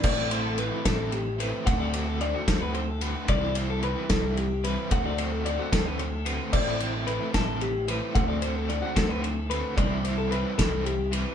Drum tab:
CC |x-----|------|------|------|
RD |-xxxxx|xxxxxx|xxxxxx|xxxxxx|
SD |---o--|---o--|---o--|---o--|
BD |o--o--|o--o--|o--o--|o--o--|

CC |x-----|------|------|
RD |-xxxxx|xxxxxx|xxxxxx|
SD |---o--|---o--|---o--|
BD |o--o--|o--o--|o--o--|